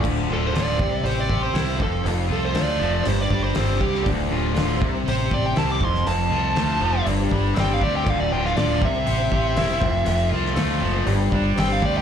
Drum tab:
CC |x---------------|----------------|----------------|----------------|
HH |----o---o---o---|o---o---o---o---|o---o---o---o---|o---o---o---o---|
SD |----o-------o---|----o-------o--o|----o-------o--o|----o-------o---|
BD |o-----o---o---o-|----------o---o-|o-----o---o---o-|----------o---o-|

CC |x---------------|----------------|
HH |----o---o---o---|o---o---o---o---|
SD |---oo-------o---|---oo-------o---|
BD |o-----o---o---o-|----------o---o-|